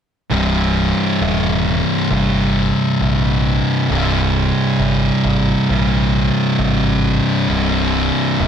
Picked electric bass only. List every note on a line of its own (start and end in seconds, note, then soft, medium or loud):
0.31 0.91 C1 medium
1.21 1.81 D#1 medium
2.11 2.71 G1 medium
3.01 3.61 A#1 medium
3.90 4.50 C1 medium
4.79 5.10 G1 medium
5.25 5.55 G#1 medium
5.69 6.29 A#1 medium
6.59 7.19 G#1 medium
7.50 8.09 C1 medium
8.40 8.48 D#1 medium